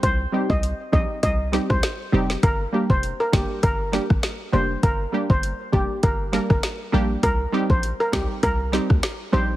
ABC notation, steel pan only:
X:1
M:4/4
L:1/16
Q:"Swing 16ths" 1/4=100
K:Cm
V:1 name="Steel pan"
c2 z e z2 e z e z2 c z4 | B z2 c z B G z B3 z3 c z | B2 z c z2 G z B z2 B z4 | B z2 c z B G z B3 z3 c z |]